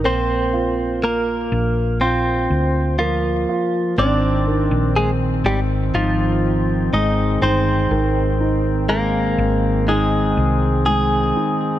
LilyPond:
<<
  \new Staff \with { instrumentName = "Clean electric guitar" } { \time 4/4 \key aes \lydian \tempo 4 = 61 << { c''4 bes'4 c''4 f4 | d''4 aes8 g8 f4 ees''8 c''8~ | c''4 bes'4 aes'4. r8 | } \\ { c'4 bes4 c'4 f'4 | d'4 aes'8 g'8 f'4 ees'8 c'8~ | c'4 bes4 aes4 aes'4 | } >> }
  \new Staff \with { instrumentName = "Grand piano" } { \time 4/4 \key aes \lydian bes8 f'8 bes4 f'4 bes8 f'8 | c'8 ees4. ees'4 aes8 ees'8 | ees8 ees'8 aes4 ees'4 aes8 ees'8 | }
  \new Staff \with { instrumentName = "Pipe organ" } { \clef bass \time 4/4 \key aes \lydian r1 | <ees c'>1~ | <ees c'>1 | }
  \new Staff \with { instrumentName = "Fingered electric bass" } { \clef bass \time 4/4 \key aes \lydian bes,,4. bes,,4 d,4 r8 | aes,,8. bes,,8. aes,,8 aes,,4 aes,,8 g,,8 | aes,,4. aes,,4 c,4 r8 | }
>>